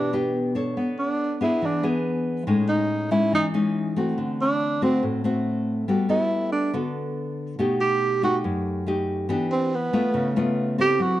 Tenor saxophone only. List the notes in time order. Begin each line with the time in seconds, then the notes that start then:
Already playing: D4
0.99 D4
1.43 E4
1.66 D4
2.68 D#4
3.11 E4
3.35 D#4
4.41 D4
4.83 C4
6.10 E4
6.52 D4
7.81 G4
8.24 F#4
9.51 C4
9.75 B3
10.81 G4
11.02 F#4